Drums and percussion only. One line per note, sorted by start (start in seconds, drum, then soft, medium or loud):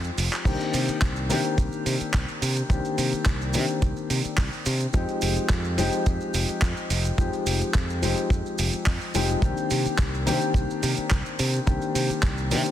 0.04 closed hi-hat soft
0.04 maracas soft
0.18 open hi-hat medium
0.18 maracas medium
0.33 clap medium
0.33 closed hi-hat medium
0.33 maracas soft
0.45 kick loud
0.45 closed hi-hat medium
0.45 crash medium
0.45 maracas soft
0.61 closed hi-hat soft
0.61 maracas soft
0.73 open hi-hat loud
0.73 maracas medium
0.88 closed hi-hat soft
0.88 maracas soft
1.02 kick loud
1.02 clap loud
1.02 closed hi-hat medium
1.02 maracas soft
1.16 maracas soft
1.30 open hi-hat loud
1.30 maracas medium
1.44 closed hi-hat medium
1.44 maracas soft
1.58 kick loud
1.58 closed hi-hat medium
1.58 maracas soft
1.72 maracas soft
1.86 open hi-hat loud
1.86 maracas medium
2.00 closed hi-hat medium
2.00 maracas soft
2.14 kick loud
2.14 clap loud
2.14 closed hi-hat medium
2.14 maracas medium
2.28 maracas soft
2.42 open hi-hat loud
2.42 maracas medium
2.56 closed hi-hat soft
2.56 maracas soft
2.70 kick loud
2.70 closed hi-hat medium
2.70 maracas medium
2.85 closed hi-hat soft
2.85 maracas soft
2.98 open hi-hat loud
2.98 maracas medium
3.13 closed hi-hat soft
3.13 maracas soft
3.26 kick loud
3.26 clap loud
3.26 closed hi-hat medium
3.26 maracas medium
3.41 maracas soft
3.53 open hi-hat loud
3.53 maracas medium
3.69 closed hi-hat soft
3.69 maracas soft
3.82 kick loud
3.82 closed hi-hat medium
3.82 maracas soft
3.97 maracas soft
4.10 open hi-hat loud
4.10 maracas medium
4.25 closed hi-hat soft
4.25 maracas soft
4.38 kick loud
4.38 clap loud
4.38 open hi-hat medium
4.38 maracas medium
4.53 maracas soft
4.66 open hi-hat loud
4.66 maracas medium
4.80 closed hi-hat medium
4.80 maracas soft
4.93 kick loud
4.93 closed hi-hat medium
4.93 maracas medium
5.09 closed hi-hat soft
5.09 maracas soft
5.21 open hi-hat loud
5.21 maracas medium
5.37 closed hi-hat soft
5.37 maracas soft
5.50 kick loud
5.50 clap loud
5.50 closed hi-hat medium
5.50 maracas medium
5.65 maracas soft
5.78 open hi-hat loud
5.78 maracas medium
5.93 closed hi-hat soft
5.93 maracas soft
6.06 kick loud
6.06 closed hi-hat medium
6.06 maracas medium
6.21 maracas soft
6.34 open hi-hat loud
6.34 maracas medium
6.49 closed hi-hat soft
6.49 maracas soft
6.62 kick loud
6.62 clap loud
6.62 closed hi-hat medium
6.62 maracas medium
6.77 maracas soft
6.90 open hi-hat loud
6.90 maracas medium
7.05 closed hi-hat soft
7.05 maracas soft
7.18 kick loud
7.18 closed hi-hat medium
7.18 maracas medium
7.33 closed hi-hat soft
7.33 maracas soft
7.46 open hi-hat loud
7.46 maracas medium
7.61 closed hi-hat soft
7.61 maracas soft
7.74 kick loud
7.74 clap loud
7.74 closed hi-hat medium
7.74 maracas medium
7.90 maracas soft
8.03 open hi-hat loud
8.03 maracas medium
8.17 closed hi-hat soft
8.17 maracas soft
8.30 kick loud
8.30 closed hi-hat medium
8.30 maracas soft
8.46 maracas soft
8.58 open hi-hat loud
8.58 maracas medium
8.73 closed hi-hat soft
8.73 maracas soft
8.86 kick loud
8.86 clap loud
8.86 open hi-hat medium
8.86 maracas medium
9.01 maracas soft
9.14 open hi-hat loud
9.14 maracas medium
9.30 closed hi-hat soft
9.30 maracas soft
9.42 kick loud
9.42 closed hi-hat medium
9.42 maracas soft
9.57 closed hi-hat soft
9.57 maracas soft
9.70 open hi-hat loud
9.70 maracas medium
9.86 closed hi-hat soft
9.86 maracas soft
9.99 kick loud
9.99 clap loud
9.99 closed hi-hat medium
9.99 maracas soft
10.15 maracas soft
10.27 open hi-hat loud
10.27 maracas medium
10.42 closed hi-hat soft
10.42 maracas soft
10.54 kick loud
10.54 closed hi-hat medium
10.54 maracas soft
10.70 maracas soft
10.83 open hi-hat loud
10.83 maracas medium
10.97 closed hi-hat soft
10.97 maracas soft
11.11 kick loud
11.11 clap loud
11.11 closed hi-hat medium
11.11 maracas medium
11.26 maracas soft
11.39 open hi-hat loud
11.39 maracas medium
11.54 closed hi-hat soft
11.54 maracas soft
11.67 kick loud
11.67 closed hi-hat medium
11.67 maracas soft
11.82 closed hi-hat soft
11.82 maracas soft
11.95 open hi-hat loud
11.95 maracas medium
12.10 closed hi-hat medium
12.10 maracas soft
12.23 kick loud
12.23 clap loud
12.23 closed hi-hat medium
12.23 maracas soft
12.38 maracas soft
12.51 open hi-hat loud
12.51 maracas medium
12.66 closed hi-hat soft
12.66 maracas soft